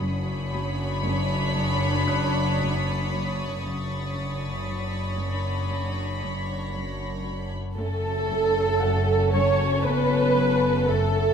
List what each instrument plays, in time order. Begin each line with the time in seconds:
Already playing: synth drone F#1, double bass section F#1, cello section F#2, viola section D4, violin section C#5 B5 C#6 D#6, harp B5
0.00 cello section F#2
0.53 cello section F#3
1.04 cello section F#2
1.55 cello section F#2, violin section A6
2.08 cello section F#2, harp F#6
2.60 cello section F#2
3.12 cello section F#3
3.62 double bass section F#1, synth drone F#1, cello section F#2, viola section D4, violin section C#5 B5
4.16 cello section F#2
4.66 cello section F#3
5.18 cello section F#2
5.70 cello section F#2
5.80 violin section A#6
6.22 cello section F#2
6.74 cello section F#2
7.24 cello section F#3
7.76 synth drone F#1, double bass section F#1, cello section F#2, french horn section A3, violin section C#4 A4, viola section A4
8.30 cello section F#2
8.80 cello section F#2, harp F#5
9.33 cello section F#2, french horn section C#4, violin section C#5, viola section C#5
9.83 cello section F#2, french horn section B3, viola section B4, violin section B4, harp C#5
10.37 cello section F#2
10.88 cello section F#2, french horn section A3, violin section A4, viola section A4